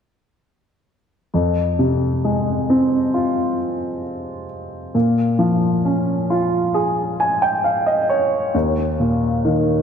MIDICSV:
0, 0, Header, 1, 2, 480
1, 0, Start_track
1, 0, Key_signature, -4, "minor"
1, 0, Tempo, 902256
1, 705, Time_signature, 4, 2, 24, 8
1, 5224, End_track
2, 0, Start_track
2, 0, Title_t, "Grand piano"
2, 0, Program_c, 0, 0
2, 711, Note_on_c, 0, 41, 35
2, 807, Control_c, 0, 64, 127
2, 952, Note_on_c, 0, 48, 37
2, 1194, Note_on_c, 0, 56, 37
2, 1435, Note_on_c, 0, 60, 40
2, 1671, Note_on_c, 0, 65, 38
2, 1892, Note_off_c, 0, 48, 0
2, 2132, Note_off_c, 0, 56, 0
2, 2371, Note_off_c, 0, 60, 0
2, 2608, Note_off_c, 0, 65, 0
2, 2611, Note_off_c, 0, 41, 0
2, 2631, Note_on_c, 0, 46, 42
2, 2637, Control_c, 0, 64, 0
2, 2743, Control_c, 0, 64, 127
2, 2866, Note_on_c, 0, 53, 40
2, 3112, Note_on_c, 0, 61, 37
2, 3353, Note_on_c, 0, 65, 42
2, 3587, Note_on_c, 0, 68, 43
2, 3805, Note_off_c, 0, 53, 0
2, 3830, Note_on_c, 0, 80, 47
2, 3940, Note_off_c, 0, 80, 0
2, 3948, Note_on_c, 0, 79, 44
2, 4046, Note_off_c, 0, 61, 0
2, 4058, Note_off_c, 0, 79, 0
2, 4066, Note_on_c, 0, 77, 46
2, 4176, Note_off_c, 0, 77, 0
2, 4184, Note_on_c, 0, 75, 49
2, 4284, Note_off_c, 0, 65, 0
2, 4295, Note_off_c, 0, 75, 0
2, 4307, Note_on_c, 0, 73, 49
2, 4521, Note_off_c, 0, 68, 0
2, 4522, Note_off_c, 0, 46, 0
2, 4528, Note_off_c, 0, 73, 0
2, 4545, Note_on_c, 0, 39, 42
2, 4550, Control_c, 0, 64, 0
2, 4645, Control_c, 0, 64, 127
2, 4786, Note_on_c, 0, 46, 41
2, 5026, Note_on_c, 0, 51, 43
2, 5224, Note_off_c, 0, 39, 0
2, 5224, Note_off_c, 0, 46, 0
2, 5224, Note_off_c, 0, 51, 0
2, 5224, End_track
0, 0, End_of_file